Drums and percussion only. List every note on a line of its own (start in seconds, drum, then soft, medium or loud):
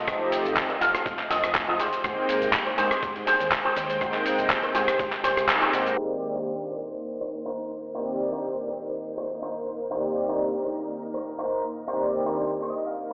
0.08 kick loud
0.08 cross-stick medium
0.08 closed hi-hat medium
0.08 shaker soft
0.32 open hi-hat loud
0.32 shaker medium
0.45 closed hi-hat soft
0.45 shaker soft
0.57 kick loud
0.57 clap loud
0.57 closed hi-hat medium
0.57 shaker soft
0.70 closed hi-hat soft
0.81 open hi-hat medium
0.81 shaker medium
0.95 cross-stick medium
0.95 closed hi-hat medium
0.95 shaker soft
1.06 kick loud
1.06 closed hi-hat medium
1.06 shaker soft
1.19 clap soft
1.19 closed hi-hat soft
1.31 open hi-hat loud
1.31 shaker medium
1.44 cross-stick medium
1.44 closed hi-hat soft
1.44 shaker soft
1.55 kick loud
1.55 clap loud
1.55 closed hi-hat medium
1.55 shaker soft
1.80 open hi-hat loud
1.80 shaker medium
1.93 closed hi-hat soft
1.93 shaker soft
2.04 kick loud
2.04 cross-stick medium
2.04 closed hi-hat medium
2.04 shaker soft
2.29 open hi-hat loud
2.29 shaker medium
2.42 closed hi-hat medium
2.42 shaker soft
2.53 kick loud
2.53 clap loud
2.53 closed hi-hat medium
2.53 shaker soft
2.67 closed hi-hat soft
2.78 open hi-hat medium
2.78 shaker medium
2.91 cross-stick medium
2.91 closed hi-hat medium
2.91 shaker soft
3.03 kick loud
3.03 closed hi-hat medium
3.03 shaker soft
3.16 closed hi-hat soft
3.27 open hi-hat loud
3.27 shaker medium
3.40 closed hi-hat soft
3.40 shaker soft
3.52 kick loud
3.52 clap loud
3.52 closed hi-hat medium
3.52 shaker soft
3.77 open hi-hat medium
3.77 shaker medium
3.90 closed hi-hat soft
3.90 shaker soft
4.01 kick loud
4.01 cross-stick medium
4.01 closed hi-hat medium
4.01 shaker soft
4.14 clap soft
4.14 closed hi-hat soft
4.26 open hi-hat loud
4.26 shaker medium
4.39 closed hi-hat medium
4.39 shaker soft
4.50 kick loud
4.50 clap loud
4.50 closed hi-hat medium
4.50 shaker soft
4.63 closed hi-hat soft
4.75 open hi-hat loud
4.75 shaker medium
4.88 cross-stick medium
4.88 closed hi-hat medium
4.88 shaker soft
4.99 kick loud
4.99 closed hi-hat medium
4.99 shaker soft
5.12 clap soft
5.12 closed hi-hat soft
5.24 open hi-hat loud
5.24 shaker medium
5.37 cross-stick medium
5.37 closed hi-hat medium
5.37 shaker soft
5.49 clap loud
5.49 closed hi-hat medium
5.49 shaker soft
5.62 closed hi-hat soft
5.73 open hi-hat medium
5.73 shaker medium
5.87 closed hi-hat medium
5.87 shaker soft